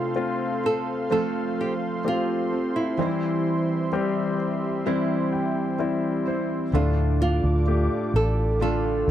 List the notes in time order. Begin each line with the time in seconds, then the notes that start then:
Already playing: C3 A3 C4 F4 A4 C5 F5 C6
0.15 A3 C4 F4
0.66 A4
1.10 F3 A3 C4 F4 A4
1.61 G4
2.04 A3 C4 F4 G4
2.51 C4 F4 A4
2.76 E4
2.97 E3 G3 C4 D#4 E4 G4 E5
3.02 C5
3.06 E4
3.93 G3 C4 G4
4.86 E3 G3 C4 E4 C5
5.32 G5
5.79 G3 C4 E4 E5
6.26 C4 E4 C5
6.72 D2 A2 D3 A3 D4 F4 A4 D5 D6
7.20 D4 F4 A4
7.44 D2
7.67 A3 D4 G4
8.14 A1 A4
8.59 D3 A3 D4 F4 E6
8.64 A4
9.08 D2